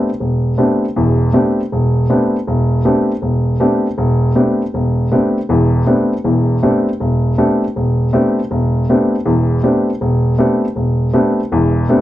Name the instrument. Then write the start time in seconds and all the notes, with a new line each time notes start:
grand piano
0.20 E1
0.58 A3 B3 C4 D4 G4
0.96 E1 E2
1.33 A3 B3 C4 D4 G4
1.72 E1
2.10 A3 B3 C4 D4 G4
2.47 E1
2.85 A3 B3 C4 D4 G4
3.22 E1
3.60 A3 B3 C4 D4 G4
3.98 E1
4.35 A3 B3 C4 D4 G4
4.74 E1
5.12 A3 B3 C4 D4 G4
5.49 E1 E2
5.86 A3 B3 C4 D4 G4
6.24 E1 E2
6.63 A3 B3 C4 D4 G4
7.00 E1
7.38 A3 B3 C4 D4 G4
7.76 E1
8.13 A3 B3 C4 D4 G4
8.51 E1
8.89 A3 B3 C4 D4 G4
9.25 E1 E2
9.63 A3 B3 C4 D4 G4
10.01 E1
10.38 A3 B3 C4 D4 G4
10.76 E1
11.13 A3 B3 C4 D4 G4
11.52 E1 E2
11.89 A3 B3 C4 D4 G4